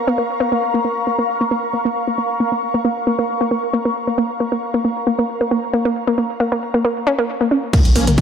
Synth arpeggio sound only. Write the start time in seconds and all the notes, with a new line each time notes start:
0.07 B3
0.18 A#3
0.40 B3
0.52 A#3
0.74 A#3
0.85 A#3
1.07 A#3
1.19 A#3
1.41 A#3
1.51 A#3
1.73 A#3
1.85 A#3
2.07 A#3
2.18 A#3
2.40 A#3
2.52 A#3
2.74 A#3
2.85 A#3
3.07 A#3
3.19 A#3
3.41 A#3
3.51 A#3
3.73 A#3
3.85 A#3
4.07 A#3
4.18 A#3
4.40 A#3
4.52 A#3
4.74 A#3
4.85 A#3
5.07 A#3
5.19 A#3
5.41 A#3
5.51 A#3
5.73 A#3
5.85 A#3
6.07 A#3
6.18 A#3
6.40 A#3
6.52 A#3
6.74 A#3
6.85 A#3
7.07 C#4
7.19 A#3
7.41 A#3
7.51 C#4
7.73 A#3
7.96 A#3
8.07 A#3